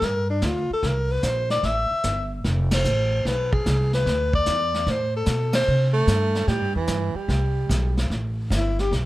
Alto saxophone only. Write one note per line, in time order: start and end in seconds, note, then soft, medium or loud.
0.04 0.29 A#4 medium
0.30 0.47 D4 medium
0.45 0.71 F4 medium
0.73 0.88 A4 medium
0.86 1.13 A#4 medium
1.11 1.25 B4 medium
1.23 1.50 C5 medium
1.51 1.67 D5 medium
1.65 2.32 E5 medium
2.74 3.28 C5 medium
3.27 3.54 B4 medium
3.52 3.93 G#4 medium
3.94 4.32 B4 medium
4.35 4.91 D5 loud
4.90 5.16 C5 medium
5.17 5.53 A4 medium
5.55 5.93 C5 loud
8.56 8.82 E4 medium
8.80 8.93 G4 medium